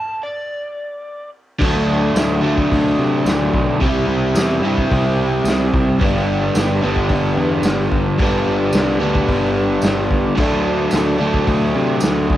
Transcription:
Already playing: electric slide guitar A5
0.23 electric slide guitar D5
1.59 picked electric bass D2, overdriven electric guitar D3 F#3, kick, crash
1.64 overdriven electric guitar A3 D4
2.15 picked electric bass D2, snare, open hi-hat, tambourine
2.41 picked electric bass D2, overdriven electric guitar F#3 A3 D4
2.46 overdriven electric guitar D3
2.58 kick
2.72 picked electric bass D2, kick, open hi-hat
2.98 picked electric bass C3
3.24 picked electric bass D2, snare, open hi-hat, tambourine
3.53 picked electric bass B1, kick
3.81 picked electric bass C2, overdriven electric guitar C3 G3 C4, kick, open hi-hat
3.86 overdriven electric guitar E4
4.07 picked electric bass C2
4.35 picked electric bass E2, snare, open hi-hat, tambourine
4.60 picked electric bass G2, overdriven electric guitar E4
4.65 overdriven electric guitar C3 G3 C4
4.78 kick
4.91 picked electric bass C2, kick, open hi-hat
5.44 picked electric bass C2, open hi-hat, tambourine
5.48 snare
5.73 picked electric bass C2, kick
5.99 picked electric bass G1, overdriven electric guitar G2 D3 G3, kick, open hi-hat
6.03 overdriven electric guitar B3 D4
6.55 picked electric bass G1, snare, open hi-hat, tambourine
6.81 picked electric bass G1, overdriven electric guitar D3 G3 B3 D4
6.86 overdriven electric guitar G2
6.96 kick
7.09 picked electric bass G1, kick, open hi-hat
7.37 picked electric bass E2
7.62 picked electric bass G1, snare, open hi-hat, tambourine
7.92 picked electric bass G1, kick
8.18 picked electric bass G1, overdriven electric guitar G2 D3 G3 B3, kick, open hi-hat
8.24 overdriven electric guitar D4
8.47 picked electric bass G1
8.73 picked electric bass C2, snare, open hi-hat, tambourine
9.00 picked electric bass D2, overdriven electric guitar G3 B3 D4
9.04 overdriven electric guitar G2 D3
9.15 kick
9.28 picked electric bass G1, kick, open hi-hat
9.82 picked electric bass G1, snare, open hi-hat, tambourine
10.11 picked electric bass G1, kick
10.35 picked electric bass D2, overdriven electric guitar D3 F#3, kick, crash
10.40 overdriven electric guitar A3 D4
10.91 picked electric bass D2, snare, open hi-hat, tambourine
11.18 picked electric bass D2, overdriven electric guitar A3 D4
11.22 overdriven electric guitar D3 F#3
11.34 kick
11.47 picked electric bass D2, kick, open hi-hat
11.75 picked electric bass C3
12.00 picked electric bass D2, snare, open hi-hat, tambourine
12.30 picked electric bass D2, kick

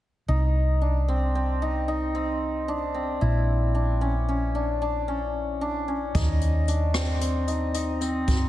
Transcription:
0.28 fingered electric bass C2, hammered dulcimer D#4
0.82 hammered dulcimer D4
1.08 hammered dulcimer C4
1.35 hammered dulcimer C4
1.62 hammered dulcimer D#4
1.88 hammered dulcimer D#4
2.15 hammered dulcimer C4
2.68 hammered dulcimer D4
2.94 hammered dulcimer C4
3.21 fingered electric bass A#1, hammered dulcimer E4
3.75 hammered dulcimer D4
4.01 hammered dulcimer C#4
4.29 hammered dulcimer C#4
4.55 hammered dulcimer D4
4.82 hammered dulcimer D4
5.08 hammered dulcimer C#4
5.61 hammered dulcimer D4
5.88 hammered dulcimer C#4
6.15 fingered electric bass D#2, hammered dulcimer D#4, kick, closed hi-hat
6.41 closed hi-hat
6.68 hammered dulcimer D4, closed hi-hat
6.94 hammered dulcimer C4, cross-stick, closed hi-hat
7.21 hammered dulcimer C4, closed hi-hat
7.48 hammered dulcimer D#4, closed hi-hat
7.74 hammered dulcimer D#4, closed hi-hat
8.01 hammered dulcimer C4, closed hi-hat
8.28 kick, closed hi-hat

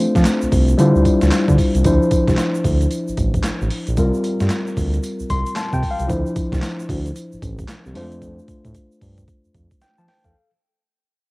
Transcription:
Already playing: tine electric piano A3 C4 D4 F4 C5
0.15 analog synth bass F3, kick, snare, closed hi-hat, shaker
0.25 snare, clap, closed hi-hat, tambourine, shaker
0.42 analog synth bass C2, shaker
0.52 analog synth bass C2, kick, open hi-hat, shaker
0.68 closed hi-hat, shaker
0.78 analog synth bass D3, tine electric piano G3 D4 E4 F4 C5, closed hi-hat, tambourine, shaker
0.96 analog synth bass D2, shaker
1.05 kick, closed hi-hat, tambourine, shaker
1.21 analog synth bass D2, snare, closed hi-hat, shaker
1.31 snare, clap, closed hi-hat, tambourine, shaker
1.48 analog synth bass D3, kick, shaker
1.58 kick, open hi-hat, tambourine, shaker
1.75 analog synth bass C2, closed hi-hat, shaker
1.84 analog synth bass D2, tine electric piano F3 D4 E4 C5, kick, closed hi-hat, tambourine, shaker
2.02 shaker
2.11 kick, closed hi-hat, tambourine, shaker
2.28 analog synth bass C2, kick, snare, closed hi-hat, shaker
2.37 snare, clap, closed hi-hat, tambourine, shaker
2.55 shaker
2.64 analog synth bass D2, kick, open hi-hat, shaker
2.81 closed hi-hat, shaker
2.91 closed hi-hat, tambourine, shaker
3.08 analog synth bass A1, shaker
3.17 analog synth bass A1, kick, closed hi-hat, tambourine, shaker
3.34 kick, closed hi-hat, shaker
3.43 analog synth bass A1, snare, clap, closed hi-hat, tambourine, shaker
3.61 analog synth bass A1, shaker
3.70 open hi-hat, tambourine
3.87 analog synth bass A#1, closed hi-hat, shaker
3.97 analog synth bass C2, tine electric piano G3 C4 F4 A#4, kick, closed hi-hat, tambourine, shaker
4.14 shaker
4.24 closed hi-hat, tambourine, shaker
4.40 analog synth bass G2, snare, closed hi-hat, shaker
4.50 snare, clap, closed hi-hat, tambourine, shaker
4.67 shaker
4.77 analog synth bass D2, kick, open hi-hat, shaker
4.93 closed hi-hat, shaker
5.03 closed hi-hat, tambourine, shaker
5.20 analog synth bass C2, shaker
5.30 analog synth bass C2, tine electric piano C6, kick, closed hi-hat, tambourine, shaker
5.46 closed hi-hat, shaker
5.56 tine electric piano A5, snare, clap, closed hi-hat, tambourine, shaker
5.73 analog synth bass C3, tine electric piano G5, kick, shaker
5.83 kick, open hi-hat, tambourine
5.91 tine electric piano F5
6.00 analog synth bass C2, closed hi-hat, shaker
6.07 analog synth bass D2, tine electric piano F3 D4 E4 C5, kick, closed hi-hat, tambourine, shaker
6.27 shaker
6.36 kick, closed hi-hat, tambourine, shaker
6.52 analog synth bass C2, kick, snare, closed hi-hat, shaker
6.62 snare, clap, closed hi-hat, tambourine, shaker
6.80 shaker
6.89 analog synth bass D2, kick, open hi-hat, shaker
7.06 closed hi-hat, shaker
7.16 closed hi-hat, tambourine, shaker
7.32 analog synth bass A1, shaker
7.42 analog synth bass A1, kick, closed hi-hat, tambourine, shaker
7.59 kick, closed hi-hat, shaker
7.68 analog synth bass C2, snare, clap, closed hi-hat, tambourine, shaker
7.86 analog synth bass C2, shaker
7.94 analog synth bass F2, tine electric piano G#3 D4 F4 C5, open hi-hat, tambourine
8.01 tine electric piano A3
8.12 closed hi-hat, shaker
8.22 kick, closed hi-hat, shaker
8.39 shaker
8.48 kick, closed hi-hat, shaker
8.65 analog synth bass A2, kick, closed hi-hat, shaker
8.75 kick, closed hi-hat, shaker
8.92 shaker
9.01 analog synth bass G2, kick, open hi-hat, shaker
9.18 kick, closed hi-hat, shaker
9.28 kick, closed hi-hat, shaker
9.44 analog synth bass F2, shaker
9.54 analog synth bass F2, kick, closed hi-hat, shaker
9.71 kick, closed hi-hat, shaker
9.81 tine electric piano G5, snare, closed hi-hat, shaker
9.98 analog synth bass F3, tine electric piano C5 A5, shaker
10.08 tine electric piano G5, snare, open hi-hat
10.24 analog synth bass E2, tine electric piano A4 F5, kick, closed hi-hat, shaker

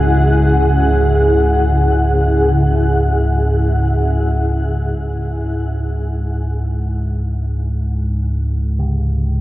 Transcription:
Already playing: synth drone C#2 G#2, ambient pad C#3 E4 G#4 F#5
4.98 synth drone C#2 G#2
8.79 bronze metallophone C#3

